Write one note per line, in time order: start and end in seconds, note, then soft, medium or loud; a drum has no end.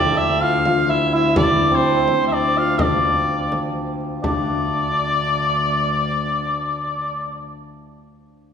0.00 4.25 D2 medium
0.00 1.71 C4 medium
0.00 1.37 D4 medium
0.00 0.17 E4 medium
0.00 2.37 G4 medium
0.00 1.89 A4 medium
0.00 0.19 D5 loud
0.17 0.47 E4 medium
0.17 0.43 E5 loud
0.17 frame drum soft
0.41 0.65 F4 medium
0.41 0.91 F5 loud
0.65 0.95 F4 medium
0.65 frame drum medium
0.89 1.13 E4 medium
0.89 1.13 E5 medium
0.89 frame drum soft
1.13 2.63 E4 medium
1.13 1.36 E5 loud
1.36 2.32 D4 medium
1.36 1.76 D5 loud
1.36 frame drum loud
1.61 frame drum soft
1.71 5.71 C4 medium
1.71 2.27 C5 medium
2.08 frame drum medium
2.27 2.34 E5 medium
2.31 2.81 D4 medium
2.31 2.59 D5 loud
2.31 frame drum soft
2.57 5.93 F4 medium
2.57 2.83 F5 medium
2.79 4.23 D4 medium
2.79 3.77 D5 medium
2.79 frame drum medium
3.28 frame drum soft
3.52 frame drum medium
4.01 frame drum soft
4.23 7.50 D2 medium
4.23 7.97 D4 medium
4.23 7.47 D5 loud
4.23 frame drum medium